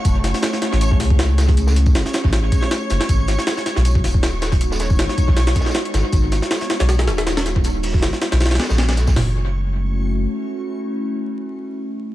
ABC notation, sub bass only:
X:1
M:4/4
L:1/16
Q:"Swing 16ths" 1/4=158
K:F#dor
V:1 name="Sub bass" clef=bass
F,,,3 z4 A,,,3 C,,6- | C,,4 F,,, z2 A,,,3 z4 F,,, z | G,,,3 z4 B,,,3 D,,,6- | D,,,4 G,,, z2 B,,,3 z4 G,,, z |
G,,,3 z4 B,,,3 D,,,6- | D,,,4 G,,, z2 B,,,3 z ^A,,,3 B,,,2 | F,,,12 z4 | z16 |]